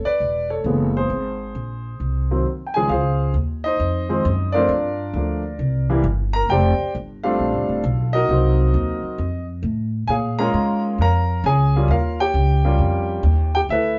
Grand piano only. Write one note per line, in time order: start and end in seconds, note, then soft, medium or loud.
0.05 0.47 B4 medium
0.05 0.51 D5 medium
0.50 0.92 A4 medium
0.50 0.92 C#5 medium
0.66 1.10 C#3 medium
0.66 1.10 E3 soft
0.66 1.10 G#3 soft
0.66 1.10 B3 medium
0.97 2.42 G#4 medium
0.97 2.42 C5 medium
2.31 2.44 D#3 medium
2.31 2.44 F#3 medium
2.31 2.44 A#3 medium
2.31 2.44 C4 medium
2.67 2.74 G5 medium
2.74 2.89 C#2 medium
2.74 2.89 D#3 medium
2.74 2.89 F3 soft
2.74 2.89 G#3 soft
2.74 2.89 C#4 medium
2.74 2.89 G#4 medium
2.74 2.88 G#5 medium
2.89 3.32 F4 medium
2.89 3.32 G#4 medium
2.89 3.32 C5 medium
2.89 3.31 F5 medium
3.64 4.51 D#4 medium
3.64 4.51 C5 medium
3.64 4.57 D#5 medium
4.09 4.23 D#3 medium
4.09 4.23 F3 medium
4.09 4.23 G#3 medium
4.09 4.23 C4 medium
4.52 4.69 F3 medium
4.52 4.68 A3 medium
4.52 4.69 A#3 medium
4.52 4.68 C4 medium
4.52 5.15 D4 medium
4.52 5.55 F4 medium
4.52 5.85 A#4 medium
4.52 5.84 D5 medium
5.16 5.42 F3 medium
5.16 5.42 A3 soft
5.16 5.42 A#3 medium
5.16 5.42 D4 medium
5.90 6.03 E3 medium
5.90 6.03 G3 medium
5.90 6.03 A#3 medium
5.90 6.03 E4 medium
6.33 6.49 A#4 medium
6.33 6.49 A#5 loud
6.50 6.92 G4 medium
6.50 6.92 C5 medium
6.50 6.92 D5 medium
6.50 6.91 G5 loud
7.24 7.81 G3 medium
7.24 7.81 A3 medium
7.24 7.81 C4 medium
7.24 7.81 D4 medium
7.24 8.10 F4 medium
7.24 8.11 A4 medium
7.24 8.10 F5 medium
8.13 8.29 D#4 medium
8.13 9.16 F#4 medium
8.13 9.16 A#4 medium
8.13 9.44 D#5 loud
8.30 9.20 F#3 medium
8.30 9.20 A#3 medium
8.30 9.20 C4 medium
8.30 9.20 D#4 medium
10.07 10.37 G#4 medium
10.07 10.37 C#5 medium
10.07 10.37 F5 medium
10.07 10.14 G#5 medium
10.39 10.96 G#3 medium
10.39 10.96 A#3 medium
10.39 10.97 C#4 medium
10.39 10.97 F4 medium
10.39 10.82 A#4 medium
10.39 10.82 C#5 medium
10.39 10.81 A#5 loud
11.01 11.42 A#4 medium
11.01 11.42 C#5 medium
11.01 11.42 F5 medium
11.01 11.47 A#5 loud
11.46 11.87 G#4 medium
11.46 11.87 C#5 medium
11.46 11.87 G#5 medium
11.76 11.89 G3 medium
11.76 11.89 A#3 medium
11.76 11.89 C#4 medium
11.76 11.89 F4 medium
11.91 12.18 F4 medium
11.91 12.18 A#4 medium
11.91 12.18 C#5 medium
11.91 12.18 F5 medium
12.20 13.51 G4 medium
12.20 13.51 C#5 medium
12.20 13.51 G5 loud
12.65 13.22 G3 medium
12.65 13.22 A#3 medium
12.65 13.22 C#4 medium
12.65 13.22 F4 medium
13.55 13.61 G4 medium
13.55 13.60 G5 medium
13.70 13.99 E4 medium
13.70 13.99 A4 medium
13.70 13.99 B4 medium
13.70 13.99 E5 medium